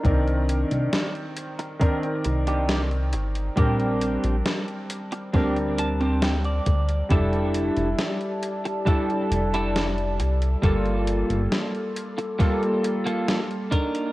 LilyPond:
<<
  \new Staff \with { instrumentName = "Ambient pad" } { \time 4/4 \key g \dorian \tempo 4 = 68 << { r1 | r1 | <g' d'' a''>1 | a'2.~ a'8 <bes d'''>8 | } \\ { r1 | r1 | e''2 r2 | r1 | } >> }
  \new Staff \with { instrumentName = "Clean electric guitar" } { \time 4/4 \key g \dorian << { r1 | r2 r8 a''8 g''16 d''8. | r1 | r1 | } \\ { <d' ees' bes'>4 r4 <d' ees' bes'>16 r8 <d' ees' g'>16 r4 | <c' d' g'>4 r4 <c' d' g'>16 r8 <c' d' g'>16 r4 | <d' e' g' a'>4 r4 <d' e' g' a'>16 r8 <d' e' g' a'>16 r4 | <bes f' a'>4 r4 <bes f' a'>16 r8 <bes f' a'>16 r8 <d' ees' bes'>8 | } >> }
  \new Staff \with { instrumentName = "Electric grand piano" } { \time 4/4 \key g \dorian <ees c' bes' d''>2 <ees c' bes' d''>2 | <g c' d' bes'>2 <g c' d' bes'>2 | <g d' e' a'>2 <g d' e' a'>2 | <g bes f' a'>2 <g bes f' a'>4. r8 | }
  \new Staff \with { instrumentName = "Analog synth bass" } { \clef bass \time 4/4 \key g \dorian c,8. c,16 r4. c,4 g,,8 | bes,,8. bes,,16 r4 d,4. d,8 | f,,8. f,,16 r4. f,,4 c,8 | g,,8. g,,16 r2. | }
  \new DrumStaff \with { instrumentName = "Drums" } \drummode { \time 4/4 <hh bd>16 hh16 hh16 hh16 <hh sn>16 hh16 hh16 hh16 <hh bd>16 hh16 hh16 hh16 <hh sn>16 hh16 hh16 hh16 | <hh bd>16 hh16 hh16 hh16 <hh sn>16 hh16 hh16 hh16 <hh bd sn>16 hh16 hh16 hh16 <hh sn>16 hh16 <hh bd>16 hh16 | <hh bd>16 hh16 hh16 hh16 <hh sn>16 hh16 hh16 hh16 <hh bd>16 hh16 hh16 hh16 <hh sn>16 hh16 hh16 hh16 | <hh bd>16 hh16 hh16 hh16 <hh sn>16 hh16 hh16 hh16 <hh bd sn>16 hh16 hh16 hh16 <hh sn>16 hh16 <hh bd>16 hh16 | }
>>